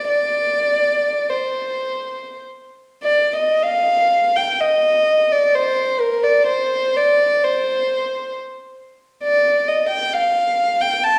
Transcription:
0, 0, Header, 1, 2, 480
1, 0, Start_track
1, 0, Tempo, 1207243
1, 35, Time_signature, 3, 2, 24, 8
1, 515, Tempo, 1113173
1, 995, Tempo, 1195219
1, 1475, Tempo, 963082
1, 3395, Tempo, 891530
1, 4835, Tempo, 930233
1, 5381, End_track
2, 0, Start_track
2, 0, Title_t, "Violin"
2, 0, Program_c, 0, 40
2, 36, Note_on_c, 0, 74, 73
2, 505, Note_off_c, 0, 74, 0
2, 517, Note_on_c, 0, 72, 50
2, 995, Note_off_c, 0, 72, 0
2, 1246, Note_on_c, 0, 74, 58
2, 1361, Note_off_c, 0, 74, 0
2, 1376, Note_on_c, 0, 75, 58
2, 1480, Note_off_c, 0, 75, 0
2, 1489, Note_on_c, 0, 77, 73
2, 1850, Note_off_c, 0, 77, 0
2, 1853, Note_on_c, 0, 79, 60
2, 1969, Note_off_c, 0, 79, 0
2, 1972, Note_on_c, 0, 75, 66
2, 2325, Note_off_c, 0, 75, 0
2, 2330, Note_on_c, 0, 74, 63
2, 2443, Note_off_c, 0, 74, 0
2, 2447, Note_on_c, 0, 72, 66
2, 2670, Note_on_c, 0, 70, 60
2, 2678, Note_off_c, 0, 72, 0
2, 2787, Note_on_c, 0, 74, 57
2, 2792, Note_off_c, 0, 70, 0
2, 2904, Note_on_c, 0, 72, 64
2, 2912, Note_off_c, 0, 74, 0
2, 3148, Note_off_c, 0, 72, 0
2, 3151, Note_on_c, 0, 74, 66
2, 3388, Note_on_c, 0, 72, 65
2, 3391, Note_off_c, 0, 74, 0
2, 3875, Note_off_c, 0, 72, 0
2, 4351, Note_on_c, 0, 74, 71
2, 4575, Note_off_c, 0, 74, 0
2, 4592, Note_on_c, 0, 75, 60
2, 4707, Note_on_c, 0, 79, 66
2, 4712, Note_off_c, 0, 75, 0
2, 4828, Note_off_c, 0, 79, 0
2, 4835, Note_on_c, 0, 77, 73
2, 5185, Note_on_c, 0, 79, 68
2, 5190, Note_off_c, 0, 77, 0
2, 5303, Note_on_c, 0, 81, 77
2, 5310, Note_off_c, 0, 79, 0
2, 5381, Note_off_c, 0, 81, 0
2, 5381, End_track
0, 0, End_of_file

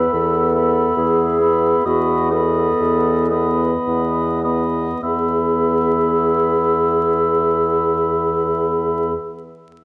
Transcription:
0, 0, Header, 1, 6, 480
1, 0, Start_track
1, 0, Key_signature, 4, "major"
1, 0, Tempo, 832178
1, 564, Tempo, 882353
1, 1044, Time_signature, 3, 2, 24, 8
1, 1044, Tempo, 938967
1, 1524, Tempo, 1061947
1, 2004, Tempo, 1165049
1, 2484, Tempo, 1111111
1, 4564, End_track
2, 0, Start_track
2, 0, Title_t, "Flute"
2, 0, Program_c, 0, 73
2, 0, Note_on_c, 0, 83, 34
2, 310, Note_off_c, 0, 83, 0
2, 320, Note_on_c, 0, 83, 35
2, 793, Note_off_c, 0, 83, 0
2, 800, Note_on_c, 0, 83, 29
2, 1039, Note_off_c, 0, 83, 0
2, 1051, Note_on_c, 0, 83, 33
2, 1277, Note_off_c, 0, 83, 0
2, 1288, Note_on_c, 0, 83, 32
2, 1751, Note_off_c, 0, 83, 0
2, 1757, Note_on_c, 0, 83, 26
2, 2236, Note_off_c, 0, 83, 0
2, 2244, Note_on_c, 0, 83, 22
2, 2479, Note_off_c, 0, 83, 0
2, 2481, Note_on_c, 0, 83, 28
2, 4255, Note_off_c, 0, 83, 0
2, 4564, End_track
3, 0, Start_track
3, 0, Title_t, "Oboe"
3, 0, Program_c, 1, 68
3, 0, Note_on_c, 1, 76, 33
3, 304, Note_off_c, 1, 76, 0
3, 315, Note_on_c, 1, 76, 29
3, 790, Note_off_c, 1, 76, 0
3, 798, Note_on_c, 1, 76, 29
3, 1038, Note_off_c, 1, 76, 0
3, 1040, Note_on_c, 1, 75, 32
3, 1272, Note_off_c, 1, 75, 0
3, 1275, Note_on_c, 1, 75, 32
3, 1746, Note_off_c, 1, 75, 0
3, 1754, Note_on_c, 1, 75, 29
3, 2235, Note_off_c, 1, 75, 0
3, 2245, Note_on_c, 1, 75, 23
3, 2480, Note_off_c, 1, 75, 0
3, 2485, Note_on_c, 1, 76, 24
3, 4257, Note_off_c, 1, 76, 0
3, 4564, End_track
4, 0, Start_track
4, 0, Title_t, "Clarinet"
4, 0, Program_c, 2, 71
4, 0, Note_on_c, 2, 71, 46
4, 72, Note_on_c, 2, 69, 49
4, 80, Note_off_c, 2, 71, 0
4, 552, Note_off_c, 2, 69, 0
4, 556, Note_on_c, 2, 68, 51
4, 1044, Note_on_c, 2, 66, 53
4, 1052, Note_off_c, 2, 68, 0
4, 1280, Note_on_c, 2, 69, 53
4, 1288, Note_off_c, 2, 66, 0
4, 2005, Note_off_c, 2, 69, 0
4, 2486, Note_on_c, 2, 68, 33
4, 4258, Note_off_c, 2, 68, 0
4, 4564, End_track
5, 0, Start_track
5, 0, Title_t, "French horn"
5, 0, Program_c, 3, 60
5, 0, Note_on_c, 3, 59, 34
5, 311, Note_off_c, 3, 59, 0
5, 325, Note_on_c, 3, 59, 32
5, 795, Note_off_c, 3, 59, 0
5, 799, Note_on_c, 3, 59, 33
5, 1038, Note_off_c, 3, 59, 0
5, 1045, Note_on_c, 3, 59, 28
5, 1275, Note_off_c, 3, 59, 0
5, 1281, Note_on_c, 3, 59, 32
5, 1748, Note_off_c, 3, 59, 0
5, 1758, Note_on_c, 3, 59, 30
5, 2237, Note_off_c, 3, 59, 0
5, 2248, Note_on_c, 3, 59, 23
5, 2481, Note_off_c, 3, 59, 0
5, 2484, Note_on_c, 3, 59, 23
5, 4257, Note_off_c, 3, 59, 0
5, 4564, End_track
6, 0, Start_track
6, 0, Title_t, "Bassoon"
6, 0, Program_c, 4, 70
6, 81, Note_on_c, 4, 40, 43
6, 505, Note_off_c, 4, 40, 0
6, 560, Note_on_c, 4, 40, 40
6, 985, Note_off_c, 4, 40, 0
6, 1045, Note_on_c, 4, 40, 42
6, 1466, Note_off_c, 4, 40, 0
6, 1524, Note_on_c, 4, 40, 40
6, 1945, Note_off_c, 4, 40, 0
6, 2010, Note_on_c, 4, 40, 32
6, 2433, Note_off_c, 4, 40, 0
6, 2487, Note_on_c, 4, 40, 27
6, 4258, Note_off_c, 4, 40, 0
6, 4564, End_track
0, 0, End_of_file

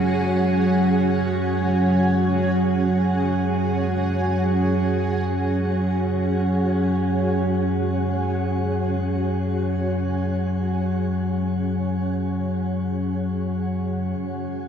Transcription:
0, 0, Header, 1, 4, 480
1, 0, Start_track
1, 0, Tempo, 500000
1, 14095, End_track
2, 0, Start_track
2, 0, Title_t, "Ambient pad"
2, 0, Program_c, 0, 92
2, 0, Note_on_c, 0, 61, 77
2, 0, Note_on_c, 0, 66, 76
2, 0, Note_on_c, 0, 68, 81
2, 13605, Note_off_c, 0, 61, 0
2, 13626, Note_off_c, 0, 66, 0
2, 13627, Note_off_c, 0, 68, 0
2, 14095, End_track
3, 0, Start_track
3, 0, Title_t, "Singing bowl"
3, 0, Program_c, 1, 14
3, 0, Note_on_c, 1, 66, 55
3, 13636, Note_off_c, 1, 66, 0
3, 14095, End_track
4, 0, Start_track
4, 0, Title_t, "Synth drone"
4, 0, Program_c, 2, 95
4, 0, Note_on_c, 2, 42, 68
4, 0, Note_on_c, 2, 54, 61
4, 13579, Note_off_c, 2, 54, 0
4, 13586, Note_off_c, 2, 42, 0
4, 13590, Note_on_c, 2, 54, 70
4, 13598, Note_on_c, 2, 42, 66
4, 14095, Note_off_c, 2, 42, 0
4, 14095, Note_off_c, 2, 54, 0
4, 14095, End_track
0, 0, End_of_file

